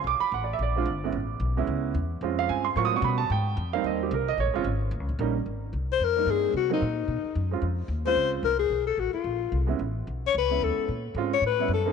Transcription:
0.04 upright bass B1, grand piano D6
0.20 grand piano B5, muted upright bass stroke
0.32 upright bass A1, grand piano F#5
0.44 grand piano D5
0.53 grand piano E5
0.59 upright bass A#1, grand piano D5
0.76 grand piano G#3 C4 D4 F4
0.86 upright bass G1
1.04 grand piano G#3 B3 C#4 E4
1.12 upright bass A1
1.40 upright bass B1
1.57 grand piano G#3 B3 C#4 E4
1.67 upright bass C#2
1.94 upright bass E2
2.21 upright bass F2, grand piano G#3 C4 C#4 F4
2.39 grand piano F5
2.49 upright bass G2, grand piano G#5
2.65 grand piano C6
2.76 upright bass A2, grand piano F#3 A#3 C4 F4 C#6
2.85 grand piano D#6
2.93 grand piano G3 B3 C#4 F#4 C#6
3.02 upright bass B2, grand piano B5
3.18 grand piano A5
3.30 upright bass G#2, grand piano G5
3.57 upright bass F2
3.73 grand piano G3 A#3 C4 D#4 F5
3.84 upright bass D#2, grand piano D#5
4.03 grand piano G4
4.11 upright bass C2, grand piano A#4
4.28 grand piano D#5
4.38 upright bass A#1, grand piano C#5
4.46 upright bass G#1
4.54 upright bass F1, grand piano G#3 C4 C#4 F4
4.64 upright bass G#1
4.91 upright bass D#2
5.00 upright bass C#2
5.09 upright bass A#1
5.19 upright bass A#1, grand piano G3 A#3 C#4 D#4
5.46 upright bass G#1
5.73 upright bass C2
5.92 alto saxophone C5
6.00 upright bass F2
6.04 alto saxophone A#4
6.16 grand piano G3 A#3 C4 D#4
6.26 upright bass G2
6.31 alto saxophone G#4
6.53 upright bass C3, alto saxophone F#4
6.70 grand piano F#3 A#3 C4 D#4, alto saxophone D#4
6.82 upright bass A#2
7.08 upright bass B2
7.24 muted upright bass stroke
7.35 upright bass F#2
7.51 grand piano G#3 C4 C#4 F4
7.62 upright bass F2
7.88 upright bass D#2
8.05 grand piano G#3 C4 C#4 F4, alto saxophone C5
8.15 upright bass C#2
8.43 upright bass C2, alto saxophone A#4
8.59 alto saxophone G#4
8.70 upright bass B1
8.87 alto saxophone A4
8.97 upright bass A1, alto saxophone F#4
9.13 alto saxophone F4, muted upright bass stroke
9.24 upright bass A#1
9.52 upright bass C2
9.67 grand piano G#3 B3 C#4 E4
9.79 upright bass A1
10.07 upright bass B1
10.27 alto saxophone C#5
10.34 upright bass C#2, alto saxophone B4
10.50 grand piano G#3 B3 C#4 E4
10.61 upright bass D#2, alto saxophone A4
10.88 upright bass A#2
11.15 upright bass G#2, grand piano G#3 C4 C#4 F4
11.33 alto saxophone C#5
11.41 upright bass A2
11.46 alto saxophone B4
11.59 grand piano G3 B3 C#4 E4
11.68 upright bass F#2
11.73 alto saxophone A4
11.86 grand piano A#3 C4 D#4 G#4

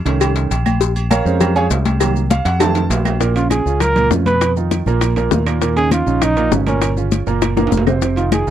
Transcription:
0.05 fretless electric bass C2, grand piano D#3 A3 C#4, cowbell, low agogo, maracas
0.21 cowbell, high conga, low agogo, claves, maracas
0.36 cowbell, high conga, maracas
0.51 fretless electric bass A#1, cowbell, high conga, low agogo, maracas
0.66 high conga, low agogo, claves, maracas
0.81 cowbell, maracas
0.96 high conga, low agogo, maracas
1.11 grand piano A#4 C#5 F5 A#5, cowbell, high conga, low agogo, claves, maracas
1.25 fretless electric bass F2, grand piano G#3 C#4 C5, high conga, maracas
1.41 cowbell, high conga, low conga, low agogo, claves, maracas
1.56 grand piano G#4 C#5 F5 G#5, high conga, low agogo, maracas
1.70 fretless electric bass C2, cowbell, high conga, low timbale, maracas
1.85 cowbell, high conga, low agogo, maracas
2.00 grand piano D#3 F#3 A#3, cowbell, low agogo, claves, maracas
2.16 high conga, maracas
2.30 grand piano F5, cowbell, high conga, low agogo, maracas
2.45 fretless electric bass F2, grand piano F#5, cowbell, low agogo, maracas
2.59 grand piano D#3 F#3 A3 A5, cowbell, high conga, high timbale, low agogo, claves, maracas
2.75 cowbell, high conga, high timbale, maracas
2.90 fretless electric bass A#1, cowbell, high conga, low timbale, low agogo, maracas
3.05 high conga, low timbale, low agogo, claves, maracas
3.20 grand piano A#2 A#3 A#4, high bongo, high conga, high timbale, maracas
3.35 grand piano C#3 C#4 F4, trumpet F4, high conga, high timbale, maracas
3.50 trumpet G#4, high bongo, high conga, high timbale, claves, maracas
3.66 fretless electric bass C#2, grand piano C#3 C#4 F4, high conga, maracas
3.80 trumpet A#4, high bongo, high conga, low conga, high timbale, claves, maracas
3.96 grand piano A#2 A#3 A#4, high conga, low conga, high timbale, maracas
4.11 fretless electric bass F2, grand piano C#3 C#4 F4, high bongo, low bongo, high conga, low timbale, maracas
4.26 grand piano B2 B3 B4, trumpet B4, high conga, high timbale, maracas
4.41 high bongo, high timbale, claves, maracas
4.56 grand piano D#3 D#4 F4, high bongo, high conga, maracas
4.71 high bongo, high conga, high timbale, maracas
4.86 fretless electric bass A#1, grand piano A#2 A#3 A#4, high bongo, high conga, maracas
5.01 high bongo, high conga, high timbale, claves, maracas
5.16 grand piano A#2 A#3 A#4, high bongo, high conga, high timbale, maracas
5.31 fretless electric bass D#2, high bongo, low bongo, high conga, low timbale, maracas
5.46 grand piano A#2 A#3 A#4, high conga, high timbale, claves, maracas
5.61 grand piano A#2 A#3 A#4, high bongo, high conga, high timbale, maracas
5.76 grand piano C#3 C#4 D#4, trumpet G#4, high conga, high timbale, maracas
5.91 trumpet F4, high bongo, high conga, high timbale, claves, maracas
6.06 fretless electric bass A#1, grand piano C#3 C#4 D#4, high conga, maracas
6.22 trumpet D#4, high bongo, high conga, low conga, high timbale, claves, maracas
6.36 grand piano A#2 A#3 A#4, high conga, high timbale, maracas
6.51 fretless electric bass G1, grand piano C#3 C#4 D#4, high bongo, low bongo, high conga, low timbale, maracas
6.67 grand piano A#2 A#3 A#4, trumpet C#4, high conga, high timbale, maracas
6.82 high bongo, high conga, high timbale, claves, maracas
6.97 grand piano C#3 C#4 F4, high bongo, high conga, maracas
7.12 high bongo, high conga, high timbale, maracas
7.27 fretless electric bass F#1, grand piano A#2 A#3 A#4, high bongo, high conga, maracas
7.42 high bongo, high conga, high timbale, claves, maracas
7.56 grand piano A#2 A#3 A#4, high bongo, high conga, high timbale, maracas
7.67 high timbale
7.72 fretless electric bass F1, low bongo, high conga, maracas
7.77 low timbale
7.87 grand piano C3 C4 C5, low bongo, low timbale, claves, maracas
8.02 grand piano C3 C4 C5, high bongo, high conga, high timbale, maracas
8.17 grand piano D#3 D#4 F4, trumpet F4, high conga, high timbale, maracas
8.32 trumpet G#4, high bongo, high conga, high timbale, claves, maracas
8.47 fretless electric bass C2, grand piano D#3 D#4, high conga, maracas

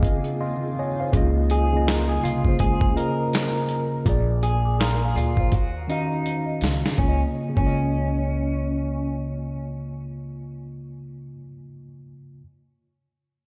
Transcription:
Already playing: tine electric piano C#3 C4 F4 D#5 F5 G#5, ambient pad D#3 D#4 F4
0.03 tine electric piano D#5, kick, closed hi-hat
0.24 closed hi-hat
0.41 tine electric piano D#5 F5 C6
0.79 tine electric piano C#5 D#5 G#5
1.00 tine electric piano C5 F5
1.12 upright bass C#2, tine electric piano C#3 A#3 F4, kick, closed hi-hat
1.17 tine electric piano D#5
1.50 clean electric guitar G#4, closed hi-hat
1.72 tine electric piano C#3 A#3 F4
1.77 tine electric piano D#5
1.87 clean electric guitar A#4, snare, clap, closed hi-hat
2.09 clean electric guitar G#4
2.23 upright bass C2, clean electric guitar F4, closed hi-hat
2.44 tine electric piano C#3 A#3 F4, kick
2.48 tine electric piano C5
2.59 upright bass C#2, clean electric guitar G#4, kick, closed hi-hat
2.81 kick
2.92 tine electric piano C#3 A#3 F4
2.97 clean electric guitar A#4, tine electric piano D#5, closed hi-hat
3.33 snare, clap, closed hi-hat
3.69 closed hi-hat
4.05 upright bass A#1, tine electric piano A#2 A#3 G#4, kick, closed hi-hat
4.09 tine electric piano D5
4.43 clean electric guitar G#4, closed hi-hat
4.65 tine electric piano G#5 D6
4.80 clean electric guitar A#4, tine electric piano F5 C6, snare, clap, closed hi-hat
5.03 clean electric guitar G#4, tine electric piano F5 A#5
5.15 upright bass D2, clean electric guitar F4, tine electric piano D5 G#5, closed hi-hat
5.37 tine electric piano C5 F5, kick
5.52 upright bass D#2, clean electric guitar F#4, kick, closed hi-hat
5.88 tine electric piano D#3 C#4 F#4 F5, clean electric guitar D#4, closed hi-hat
6.26 closed hi-hat
6.61 upright bass C#2, snare, closed hi-hat
6.86 snare
6.91 tine electric piano C#3
6.97 upright bass C#2, tine electric piano A#3, clean electric guitar C#4, kick
7.03 tine electric piano F4
7.09 tine electric piano D#5
7.49 tine electric piano C#3
7.55 upright bass C#2, tine electric piano A#3, clean electric guitar C#4, kick
7.61 tine electric piano F4
7.67 tine electric piano D#5

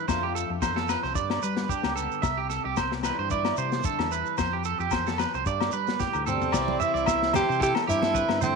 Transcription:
0.08 clean electric guitar F2 F3 A3 D4 F4 C5, fingered electric bass F2, kick, snare, low agogo, shekere
0.23 clean electric guitar G4
0.35 clean electric guitar A4, shekere
0.50 fingered electric bass F2
0.62 clean electric guitar E2 C5, kick, snare, low agogo, shekere
0.76 clean electric guitar A4, snare
0.89 clean electric guitar F2 B4, snare, low agogo, shekere
1.03 fingered electric bass C2, clean electric guitar C5, snare
1.15 clean electric guitar G2 D5, fingered electric bass G2, kick, shekere
1.30 snare, low agogo
1.42 fingered electric bass G3, clean electric guitar B4, shekere
1.56 snare, shekere
1.69 clean electric guitar D4 G4, kick, shekere
1.83 fingered electric bass C#2, snare, low agogo
1.96 clean electric guitar D3 B3 A4, shekere
2.12 shekere
2.22 fingered electric bass C2, clean electric guitar C3 E5, kick, snare, low agogo, shekere
2.37 clean electric guitar G4
2.50 clean electric guitar A4, snare, shekere
2.65 fingered electric bass C2, clean electric guitar G4
2.77 clean electric guitar C4 C5, kick, snare, low agogo, shekere
2.92 muted clean electric guitar stroke, snare
3.03 clean electric guitar E3 G3 B4, snare, low agogo, shekere
3.19 fingered electric bass G2, clean electric guitar C5
3.30 clean electric guitar E4 D5, kick, shekere
3.45 snare, low agogo
3.57 clean electric guitar G2 C4 C5, fingered electric bass C3, shekere
3.72 snare, shekere
3.84 clean electric guitar D3 A4, kick, shekere
3.99 fingered electric bass E2, snare, low agogo
4.11 clean electric guitar E3 B4, shekere
4.26 shekere
4.38 clean electric guitar F2 C5, fingered electric bass F2, kick, snare, low agogo, shekere
4.53 clean electric guitar G4
4.64 clean electric guitar A4, shekere
4.79 fingered electric bass F2, clean electric guitar G4, shekere
4.91 clean electric guitar E2 C5, kick, snare, low agogo, shekere
5.07 clean electric guitar A4, snare, shekere
5.18 clean electric guitar F2 B4, snare, low agogo, shekere
5.34 fingered electric bass C2, clean electric guitar C5, shekere
5.46 clean electric guitar G2 D5, fingered electric bass G2, kick, shekere
5.60 snare, low agogo, shekere
5.72 fingered electric bass G3, clean electric guitar B4, shekere
5.87 snare, shekere
6.00 clean electric guitar A2 G4, kick, snare, shekere
6.13 fingered electric bass D2, low agogo, shekere
6.26 clean electric guitar B2 A4, alto saxophone C4, mid tom, shekere
6.31 tenor saxophone G3
6.42 floor tom, shekere
6.52 fingered electric bass C2, clean electric guitar C3 E3 G3 E4 D5, muted clean electric guitar stroke, kick, snare, crash, low agogo, shekere
6.68 high conga
6.80 clean electric guitar G3 E5, tenor saxophone C4, alto saxophone E4, shekere
6.94 fingered electric bass C2, clean electric guitar D5, shekere
7.06 clean electric guitar C4 E5, kick, snare, low agogo, shekere
7.22 snare
7.33 clean electric guitar E3 G3 C5, tenor saxophone E4, alto saxophone G4, snare, low conga, low agogo, shekere
7.49 fingered electric bass C3, clean electric guitar C5, shekere
7.60 tenor saxophone E4, alto saxophone G4, clean electric guitar A4, kick, shekere
7.75 snare, low agogo
7.87 fingered electric bass G2, clean electric guitar C4 G4, tenor saxophone C4, alto saxophone E4, shekere
8.02 clean electric guitar A4, snare, high conga, shekere
8.14 clean electric guitar D3 B4, kick, shekere
8.29 fingered electric bass G2, snare, low agogo
8.41 clean electric guitar E3 C5, tenor saxophone A3, alto saxophone C4, low conga, shekere

